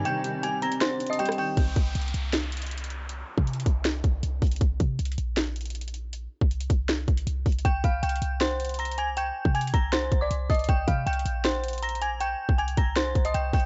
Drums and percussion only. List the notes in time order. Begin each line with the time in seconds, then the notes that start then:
0.05 closed hi-hat
0.24 closed hi-hat
0.43 closed hi-hat
0.62 closed hi-hat
0.72 closed hi-hat
0.81 snare, closed hi-hat
1.00 closed hi-hat
1.07 closed hi-hat
1.13 closed hi-hat
1.19 closed hi-hat
1.26 cross-stick, closed hi-hat
1.32 closed hi-hat
1.38 open hi-hat
1.57 kick, closed hi-hat
1.76 kick, closed hi-hat
1.95 closed hi-hat
2.02 closed hi-hat
2.08 closed hi-hat
2.14 closed hi-hat
2.33 snare, closed hi-hat
2.52 closed hi-hat
2.57 closed hi-hat
2.62 closed hi-hat
2.67 closed hi-hat
2.71 closed hi-hat
2.78 closed hi-hat
2.84 closed hi-hat
2.90 closed hi-hat
3.09 closed hi-hat
3.38 kick
3.47 closed hi-hat
3.53 closed hi-hat
3.60 closed hi-hat
3.66 kick, closed hi-hat
3.85 snare, closed hi-hat
4.04 kick, closed hi-hat
4.23 closed hi-hat
4.42 kick, closed hi-hat, open hi-hat
4.47 closed hi-hat
4.52 closed hi-hat
4.56 closed hi-hat
4.61 kick, closed hi-hat
4.80 kick, closed hi-hat
4.99 closed hi-hat
5.05 closed hi-hat
5.12 closed hi-hat
5.18 closed hi-hat
5.37 snare, closed hi-hat
5.56 closed hi-hat
5.61 closed hi-hat
5.66 closed hi-hat
5.70 closed hi-hat
5.75 closed hi-hat
5.81 closed hi-hat
5.88 closed hi-hat
5.94 closed hi-hat
6.13 closed hi-hat
6.41 kick
6.51 closed hi-hat
6.61 closed hi-hat
6.70 kick, closed hi-hat
6.89 snare, closed hi-hat
7.08 kick, closed hi-hat
7.17 closed hi-hat
7.27 closed hi-hat
7.46 kick, closed hi-hat, open hi-hat
7.52 closed hi-hat
7.59 closed hi-hat
7.65 kick, closed hi-hat
7.84 kick, closed hi-hat
8.03 closed hi-hat
8.09 closed hi-hat
8.16 closed hi-hat
8.22 closed hi-hat
8.41 snare, closed hi-hat
8.60 closed hi-hat
8.65 closed hi-hat
8.69 closed hi-hat
8.74 closed hi-hat
8.79 closed hi-hat
8.85 closed hi-hat
8.91 closed hi-hat
8.98 closed hi-hat
9.17 closed hi-hat
9.45 kick
9.55 closed hi-hat
9.61 closed hi-hat
9.67 closed hi-hat
9.74 kick, closed hi-hat
9.93 snare, closed hi-hat
10.12 kick, closed hi-hat
10.31 closed hi-hat
10.50 kick, closed hi-hat, open hi-hat
10.54 closed hi-hat
10.59 closed hi-hat
10.64 closed hi-hat
10.69 kick, closed hi-hat
10.88 kick, closed hi-hat
11.07 closed hi-hat
11.13 closed hi-hat
11.19 closed hi-hat
11.26 closed hi-hat
11.45 snare, closed hi-hat
11.64 closed hi-hat
11.68 closed hi-hat
11.73 closed hi-hat
11.78 closed hi-hat
11.82 closed hi-hat
11.89 closed hi-hat
11.95 closed hi-hat
12.02 closed hi-hat
12.20 closed hi-hat
12.49 kick
12.58 closed hi-hat
12.68 closed hi-hat
12.77 kick, closed hi-hat
12.96 snare, closed hi-hat
13.15 kick, closed hi-hat
13.25 closed hi-hat
13.34 closed hi-hat
13.53 kick, closed hi-hat, open hi-hat
13.60 closed hi-hat